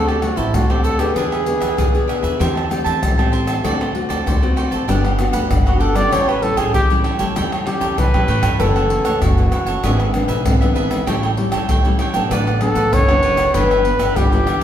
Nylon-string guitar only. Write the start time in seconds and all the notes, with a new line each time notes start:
Already playing: D3 A3 C4 F#4
0.23 A3 C4 F#4
0.55 A2
0.70 A3 C4 F#4
0.99 B3 D4 G#4
1.16 E3
1.47 B3 D4 G#4
1.78 B2
1.94 B3 D4 G#4
2.40 E3 A3 C4 G4
2.71 A3 C4 G4
3.03 E3
3.18 A3 C4 G4
3.64 D3 A3 C4 F#4
3.95 A3 C4 F#4
4.27 A2
4.42 A3 C4 F#4
4.88 G3 B3 D4 F#4
5.19 B3 D4 F#4
5.51 D3
5.67 B3 D4 F#4
5.95 G3 C#4 E4
6.12 A2
6.42 G3 C#4 E4
6.74 E3
6.90 G3 C#4 E4
7.19 G3 C#4 E4
7.36 A2 G3 C#4 E4
7.66 G3 C#4 E4
7.98 E3
8.14 G3 C#4 E4
8.60 F#2 E3 A3 C#4
8.90 E3 A3 C#4
9.22 C#3
9.37 E3 A3 C#4
9.84 G#2 E3 B3 D4
10.14 E3 B3 D4
10.46 G#2
10.62 E3 B3 D4
11.07 A2 G3 C#4 E4
11.38 G3 C#4 E4
11.69 E3
11.85 G3 C#4 E4
12.14 F#3 B3 D4
12.31 A2
12.61 F#3 B3 D4
12.93 A2
13.08 F#3 B3 D4
13.54 G2 E3 B3 D4
13.84 E3 B3 D4
14.16 D3
14.32 E3 B3 D4